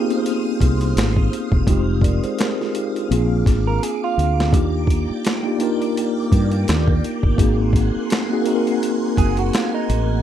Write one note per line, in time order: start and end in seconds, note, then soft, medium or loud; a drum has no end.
0.00 1.69 A#3 medium
0.00 1.69 B3 medium
0.00 1.67 C4 medium
0.00 1.68 D#4 medium
0.00 1.69 F4 medium
0.00 1.17 G4 medium
0.00 1.69 G#4 medium
0.00 3.06 C5 medium
0.00 1.64 F5 medium
0.00 3.06 D#6 medium
0.10 closed hi-hat soft
0.26 closed hi-hat medium
0.61 0.93 C2 medium
0.61 kick medium
0.61 closed hi-hat medium
0.81 closed hi-hat soft
0.97 1.28 G#1 medium
0.97 finger snap medium
0.97 snare loud
0.97 closed hi-hat medium
1.16 kick medium
1.33 closed hi-hat medium
1.52 1.66 E1 medium
1.52 kick loud
1.66 2.19 F1 loud
1.66 2.45 G#3 medium
1.66 2.46 C4 medium
1.66 2.03 D#4 medium
1.66 2.04 F4 medium
1.66 4.50 F5 medium
1.66 kick loud
1.66 closed hi-hat medium
1.70 2.04 G4 medium
2.02 2.23 A#4 soft
2.02 2.22 D5 medium
2.02 kick medium
2.02 closed hi-hat medium
2.24 2.38 G#4 medium
2.24 2.38 C5 medium
2.24 muted fretless electric bass stroke soft
2.24 closed hi-hat soft
2.39 2.59 G4 medium
2.39 2.58 A#4 medium
2.39 finger snap medium
2.39 snare medium
2.39 closed hi-hat medium
2.60 2.74 F4 medium
2.60 2.74 G#4 medium
2.60 snare soft
2.75 2.95 D#4 medium
2.75 2.94 G4 medium
2.75 closed hi-hat medium
2.96 3.16 D4 soft
2.96 3.11 F4 medium
2.96 closed hi-hat soft
3.09 3.43 A#1 loud
3.09 4.36 A#3 medium
3.09 10.22 A#3 medium
3.09 4.37 C4 medium
3.09 3.18 C#4 medium
3.09 4.38 F4 medium
3.09 7.35 D6 medium
3.09 closed hi-hat medium
3.13 4.39 G#4 medium
3.18 4.41 D4 medium
3.46 3.78 G#1 medium
3.46 kick medium
3.46 snare soft
3.46 closed hi-hat medium
3.67 3.83 A#4 medium
3.83 4.02 G#4 medium
3.83 closed hi-hat medium
4.04 4.51 F4 medium
4.18 4.53 D2 medium
4.18 closed hi-hat medium
4.40 snare medium
4.51 5.05 D#2 loud
4.51 5.30 A#3 medium
4.51 5.31 D4 medium
4.51 5.32 D#4 medium
4.51 5.32 F4 medium
4.51 7.36 D5 medium
4.51 7.36 G5 medium
4.51 kick loud
4.51 closed hi-hat medium
4.55 5.33 G4 medium
4.87 kick medium
4.87 closed hi-hat medium
5.10 muted fretless electric bass stroke soft
5.25 finger snap medium
5.25 snare loud
5.25 closed hi-hat medium
5.43 5.57 A#3 medium
5.43 5.58 D4 medium
5.43 5.58 D#4 medium
5.43 5.59 F4 medium
5.48 5.59 G4 medium
5.58 6.86 A#3 medium
5.58 6.87 D4 medium
5.58 6.87 D#4 medium
5.58 6.88 F4 medium
5.58 closed hi-hat medium
5.63 6.88 A#4 loud
5.82 closed hi-hat soft
5.97 closed hi-hat medium
6.32 6.64 G2 medium
6.32 kick medium
6.32 closed hi-hat medium
6.52 closed hi-hat soft
6.68 7.00 D#2 medium
6.68 finger snap medium
6.68 snare loud
6.68 closed hi-hat medium
6.88 kick medium
7.04 closed hi-hat medium
7.23 7.37 G1 medium
7.23 kick loud
7.37 7.91 G#1 medium
7.37 8.16 A#3 medium
7.37 8.17 C4 medium
7.37 8.17 D#4 medium
7.37 8.18 F#4 medium
7.37 10.21 F#5 medium
7.37 10.21 G#5 medium
7.37 10.21 C6 medium
7.37 kick loud
7.37 closed hi-hat medium
7.41 8.18 G#4 medium
7.73 kick medium
7.73 closed hi-hat medium
7.96 muted fretless electric bass stroke soft
8.10 finger snap medium
8.10 snare loud
8.10 closed hi-hat medium
8.29 8.43 A#3 medium
8.29 8.43 C4 medium
8.29 8.44 D#4 medium
8.29 8.45 F#4 medium
8.34 8.45 G#4 medium
8.44 9.72 A#3 medium
8.44 9.72 C4 medium
8.44 9.73 D#4 medium
8.44 9.73 F#4 medium
8.44 closed hi-hat medium
8.49 8.55 G#4 medium
8.55 9.77 A#4 medium
8.67 closed hi-hat soft
8.83 closed hi-hat medium
9.17 9.50 F#1 medium
9.17 9.39 G#4 medium
9.17 kick medium
9.17 closed hi-hat medium
9.37 9.54 F#4 medium
9.37 closed hi-hat soft
9.53 9.73 F4 medium
9.53 finger snap medium
9.53 snare loud
9.53 closed hi-hat medium
9.75 10.22 D#4 medium
9.89 10.21 A1 medium
9.89 closed hi-hat medium